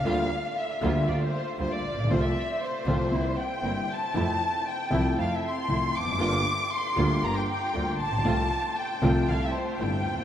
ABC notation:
X:1
M:4/4
L:1/16
Q:1/4=117
K:F
V:1 name="Violin section"
f4 e4 d c3 c d3 | c e3 c6 g4 a2- | a4 g4 f e c'4 d'2- | d'4 c'4 b g g4 a2- |
a4 g4 f e c2 g4 |]
V:2 name="String section"
[G,B,F]2 z4 [G,B,F]2 [G,B,F]2 z2 [G,B,F]2 z2 | [A,CF]2 z4 [A,CF]2 [B,CE]2 z2 [B,CE]2 z2 | [F,A,E]2 z4 [F,A,E]2 [F,A,E]2 z2 [F,A,E]2 z2 | [G,B,F]2 z4 [G,B,F]2 [G,B,F]2 z2 [G,B,F]2 z2 |
[A,CF]2 z4 [A,CF]2 [A,CE]2 z2 [A,CE]2 z2 |]
V:3 name="Grand piano" clef=bass
[D,,D,G,B,F]2 z4 [D,,D,G,B,F]2 [D,,D,G,B,F]2 z2 [D,,D,G,B,F]2 z/2 A,,,/2 B,,,/2 =B,,,/2 | [C,,C,F,A,F]2 z4 [C,,C,F,A,F]2 [C,,C,G,B,E]2 z2 [G,,,G,,C,G,B,E]2 z2 | [F,,C,F,A,E]2 z4 [C,,C,F,A,E]2 [F,,C,F,A,E]2 z2 [C,,C,F,A,E]2 z/2 E,,/2 F,,/2 _G,,/2 | [G,,,G,,D,G,B,F]2 z4 [D,,D,G,B,F]2 [G,,,G,,D,G,B,]2 z2 [D,,D,G,B,F]2 z/2 A,,,/2 B,,,/2 =B,,,/2 |
[C,,C,F,A,F]2 z4 [C,,C,F,A,F]2 [C,,C,G,A,E]2 z2 [G,,,G,,C,G,A,E]2 z/2 D,,/2 _E,,/2 z/2 |]
V:4 name="Double bass" clef=bass
D,,2 z4 D,,2 D,,2 z2 D,,2 B,,,2 | C,,2 z4 C,,2 C,,2 z2 G,,,2 z2 | F,,2 z4 C,,2 F,,2 z2 C,,2 F,,,2 | G,,,2 z4 D,,2 G,,,2 z2 D,,2 B,,,2 |
C,,2 z4 C,,2 C,,2 z2 G,,,2 _E,,2 |]